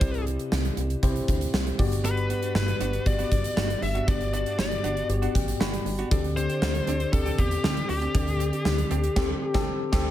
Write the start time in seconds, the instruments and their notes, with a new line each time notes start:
Already playing: tine electric piano C3 B4, lead electric guitar C5
0.00 analog synth bass C2, tine electric piano C4 E4 G4 D5, kick, closed hi-hat
0.14 closed hi-hat
0.27 closed hi-hat
0.39 closed hi-hat
0.52 analog synth bass C2, snare
0.65 closed hi-hat
0.77 analog synth bass C2, closed hi-hat
0.90 closed hi-hat
1.02 analog synth bass C2, tine electric piano C4 E4 G4 C5, kick, closed hi-hat
1.16 closed hi-hat
1.28 analog synth bass D2, kick, closed hi-hat
1.41 closed hi-hat
1.54 analog synth bass C2, snare
1.67 closed hi-hat
1.78 analog synth bass G1, tine electric piano G2 B3 F#4 G4 D5, kick, open hi-hat
1.92 closed hi-hat
2.04 clean electric guitar B3 D4 F#4, lead electric guitar B4, closed hi-hat
2.17 closed hi-hat
2.29 clean electric guitar B3 D4 F#4, closed hi-hat
2.42 clean electric guitar B3 D4 F#4, closed hi-hat
2.55 analog synth bass G1, lead electric guitar B4, snare
2.68 muted clean electric guitar stroke, closed hi-hat
2.80 analog synth bass G1, clean electric guitar B3 D4 F#4, closed hi-hat
2.93 clean electric guitar B3 D4 F#4, closed hi-hat
3.06 analog synth bass G1, tine electric piano B3 F#4 G4 D5, lead electric guitar D5, muted clean electric guitar stroke, kick, closed hi-hat
3.18 clean electric guitar B3 D4 F#4, closed hi-hat
3.31 analog synth bass G1, muted clean electric guitar stroke, kick, closed hi-hat
3.44 muted clean electric guitar stroke, closed hi-hat
3.56 analog synth bass G1, clean electric guitar B3 D4 F#4, snare
3.69 muted clean electric guitar stroke, closed hi-hat
3.82 analog synth bass G1, tine electric piano G2, lead electric guitar E5, muted clean electric guitar stroke, open hi-hat
3.95 clean electric guitar B3 D4 F#4, closed hi-hat
4.07 analog synth bass G1, tine electric piano B3 F#4 G4 D5, clean electric guitar B3 D4 F#4, lead electric guitar D5, kick, closed hi-hat
4.21 closed hi-hat
4.33 clean electric guitar B3 D4 F#4, lead electric guitar D5, closed hi-hat
4.46 clean electric guitar B3 D4 F#4, closed hi-hat
4.59 analog synth bass G1, lead electric guitar D5, snare
4.71 muted clean electric guitar stroke, closed hi-hat
4.84 analog synth bass G1, clean electric guitar B3 D4 F#4, closed hi-hat
4.97 clean electric guitar B3 D4 F#4, closed hi-hat
5.09 analog synth bass G1, tine electric piano B3 F#4 G4 D5, muted clean electric guitar stroke, closed hi-hat
5.22 clean electric guitar B3 D4 F#4, closed hi-hat
5.35 analog synth bass A1, tine electric piano G5, muted clean electric guitar stroke, kick, closed hi-hat
5.48 muted clean electric guitar stroke, closed hi-hat
5.60 analog synth bass G1, clean electric guitar B3 D4 F#4, tine electric piano B5, snare
5.73 muted clean electric guitar stroke, closed hi-hat
5.86 analog synth bass G1, muted clean electric guitar stroke, open hi-hat
5.99 clean electric guitar B3 D4 F#4, closed hi-hat
6.11 analog synth bass D2, tine electric piano D3 C4 G4 A4 D5, clean electric guitar C4 D4 G4, kick, closed hi-hat
6.24 closed hi-hat
6.37 clean electric guitar C4 D4 G4, lead electric guitar C5, closed hi-hat
6.49 clean electric guitar C4 D4 G4, closed hi-hat
6.62 analog synth bass D2, snare
6.75 muted clean electric guitar stroke, closed hi-hat
6.87 analog synth bass D2, clean electric guitar C4 D4 G4, closed hi-hat
7.00 clean electric guitar C4 D4 G4, closed hi-hat
7.13 analog synth bass D2, tine electric piano C4 G4 A4 D5, lead electric guitar A4, muted clean electric guitar stroke, kick, closed hi-hat
7.26 clean electric guitar C4 D4 G4, closed hi-hat
7.38 analog synth bass E2, lead electric guitar G4, muted clean electric guitar stroke, kick, closed hi-hat
7.51 muted clean electric guitar stroke, closed hi-hat
7.64 analog synth bass D2, clean electric guitar C4 D4 G4, snare
7.76 muted clean electric guitar stroke, closed hi-hat
7.89 analog synth bass D2, lead electric guitar G4, muted clean electric guitar stroke, open hi-hat
8.02 clean electric guitar C4 D4 G4, closed hi-hat
8.14 analog synth bass D2, tine electric piano D3 C4 G4 A4 D5, clean electric guitar C4 D4 G4, kick, closed hi-hat
8.27 closed hi-hat
8.40 clean electric guitar C4 D4 G4, closed hi-hat
8.53 clean electric guitar C4 D4 G4, closed hi-hat
8.65 analog synth bass D2, muted clean electric guitar stroke, snare
8.78 muted clean electric guitar stroke, closed hi-hat
8.91 analog synth bass D2, clean electric guitar C4 D4 G4, closed hi-hat
9.03 clean electric guitar C4 D4 G4, closed hi-hat
9.16 analog synth bass D2, tine electric piano C4 G4 A4, clean electric guitar C4 D4 G4, kick, snare, crash
9.54 analog synth bass D2, clean electric guitar C4 D4 G4, tine electric piano C4 G4 A4, kick, snare
9.92 analog synth bass D2, tine electric piano C4 G4 A4, clean electric guitar C4 D4 G4, kick, snare, crash